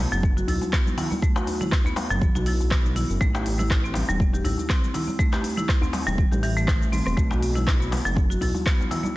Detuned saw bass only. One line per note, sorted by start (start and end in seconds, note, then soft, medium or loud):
0.12 0.43 F#1 medium
0.48 0.58 B1 loud
2.10 2.28 F#1 medium
2.35 3.04 B1 loud
3.10 3.18 F#1 loud
3.21 4.03 A1 loud
4.09 4.40 E1 medium
4.45 4.55 A1 loud
6.07 6.25 E1 medium
6.32 7.01 A1 loud
7.06 7.15 E1 loud
7.17 8.00 B1 loud
8.05 8.37 F#1 medium
8.41 8.51 B1 loud